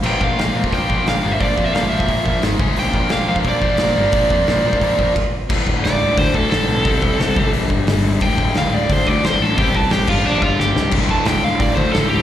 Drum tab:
CC |x---------------|----------------|----------------|------------x---|
HH |----o---o---o---|o---o---o---o---|o---o---o---o---|o---o---o-------|
SD |----o-------o---|----o-------o---|----o-------o---|----o-----------|
BD |--o----oo-o-----|o-o----oo-o---o-|--o----oo-o-----|o-o----oo-o-o---|

CC |x---------------|----------------|----------------|------x---------|
HH |----o---o---o---|o---o---o---o---|o---o---o---o---|o---o-----------|
SD |----o-------o---|----o-------o---|----o-------o---|----o-------o-o-|
BD |o-o-----o-o-----|o-o---o---o-----|o-o-----o-o-----|o-o---o---o-----|

CC |x---------------|
HH |----o---o---o---|
SD |----o-------o---|
BD |o-o-----o-o-----|